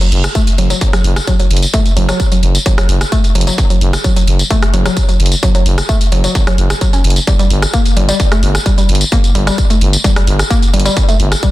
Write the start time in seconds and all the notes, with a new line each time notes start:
0.01 F#3, closed hi-hat, tambourine
0.12 F#1, open hi-hat
0.24 cross-stick, closed hi-hat, tambourine
0.35 A3, kick, closed hi-hat, tambourine
0.47 closed hi-hat, tambourine
0.58 F#1 F#3, open hi-hat
0.70 F#3, closed hi-hat, tambourine
0.81 kick, closed hi-hat, tambourine
0.93 F#3, cross-stick, closed hi-hat, tambourine
1.04 F#1, open hi-hat
1.16 cross-stick, closed hi-hat, tambourine
1.27 F#3, kick, closed hi-hat, tambourine
1.39 F#3, closed hi-hat, tambourine
1.50 F#1, open hi-hat
1.57 closed hi-hat
1.63 closed hi-hat, tambourine
1.74 A3, kick, closed hi-hat, tambourine
1.86 closed hi-hat, tambourine
1.97 F#1 F#3, open hi-hat
2.09 F#3, cross-stick, closed hi-hat, tambourine
2.20 kick, closed hi-hat, tambourine
2.32 F#3, closed hi-hat, tambourine
2.43 F#1, open hi-hat
2.55 closed hi-hat, tambourine
2.66 F#3, kick, closed hi-hat, tambourine
2.78 F#3, cross-stick, closed hi-hat, tambourine
2.89 F#1, open hi-hat
3.01 cross-stick, closed hi-hat, tambourine
3.12 A3, kick, closed hi-hat, tambourine
3.24 closed hi-hat, tambourine
3.35 F#1 F#3, open hi-hat
3.41 closed hi-hat
3.47 F#3, closed hi-hat, tambourine
3.58 kick, closed hi-hat, tambourine
3.70 F#3, closed hi-hat, tambourine
3.81 F#1, open hi-hat
3.93 cross-stick, closed hi-hat, tambourine
4.04 F#3, kick, closed hi-hat, tambourine
4.16 F#3, closed hi-hat, tambourine
4.27 F#1, open hi-hat
4.39 closed hi-hat, tambourine
4.50 A3, kick, closed hi-hat
4.62 cross-stick, closed hi-hat, tambourine
4.74 F#1 F#3, open hi-hat
4.86 F#3, cross-stick, closed hi-hat, tambourine
4.97 kick, closed hi-hat, tambourine
5.09 F#3, closed hi-hat, tambourine
5.20 F#1, open hi-hat
5.26 closed hi-hat
5.32 closed hi-hat, tambourine
5.43 F#3, kick, closed hi-hat, tambourine
5.55 F#3, closed hi-hat, tambourine
5.66 F#1, open hi-hat
5.78 cross-stick, closed hi-hat, tambourine
5.89 A3, kick, closed hi-hat, tambourine
6.01 closed hi-hat, tambourine
6.12 F#1 F#3, open hi-hat
6.24 F#3, closed hi-hat, tambourine
6.35 kick, closed hi-hat, tambourine
6.47 F#3, cross-stick, closed hi-hat, tambourine
6.58 F#1, open hi-hat
6.70 cross-stick, closed hi-hat, tambourine
6.81 F#3, kick, closed hi-hat, tambourine
6.93 C#4, closed hi-hat, tambourine
7.04 F#1, open hi-hat
7.10 closed hi-hat
7.16 closed hi-hat, tambourine
7.27 G3, kick, closed hi-hat, tambourine
7.39 G3, closed hi-hat, tambourine
7.50 G1, open hi-hat
7.62 cross-stick, closed hi-hat, tambourine
7.74 A#3, kick, closed hi-hat, tambourine
7.86 closed hi-hat, tambourine
7.97 G1 G3, open hi-hat
8.09 G3, closed hi-hat, tambourine
8.20 kick, closed hi-hat, tambourine
8.32 A3, cross-stick, closed hi-hat, tambourine
8.43 G1, open hi-hat
8.55 cross-stick, closed hi-hat, tambourine
8.66 G3, kick, closed hi-hat, tambourine
8.78 G3, closed hi-hat, tambourine
8.89 G1, open hi-hat
8.95 closed hi-hat
9.01 closed hi-hat, tambourine
9.12 A#3, kick, closed hi-hat
9.24 closed hi-hat, tambourine
9.35 G1 G3, open hi-hat
9.47 G3, cross-stick, closed hi-hat, tambourine
9.58 kick, closed hi-hat, tambourine
9.70 A3, closed hi-hat, tambourine
9.81 G1, open hi-hat
9.93 closed hi-hat, tambourine
10.04 G3, kick, closed hi-hat, tambourine
10.16 G3, cross-stick, closed hi-hat, tambourine
10.27 G1, open hi-hat
10.39 cross-stick, closed hi-hat, tambourine
10.50 A#3, kick, closed hi-hat, tambourine
10.62 closed hi-hat, tambourine
10.73 G1 G3, open hi-hat
10.80 closed hi-hat
10.86 G3, closed hi-hat, tambourine
10.97 kick, closed hi-hat, tambourine
11.09 A3, closed hi-hat, tambourine
11.20 G1, open hi-hat
11.32 cross-stick, closed hi-hat, tambourine
11.43 G3, kick, closed hi-hat, tambourine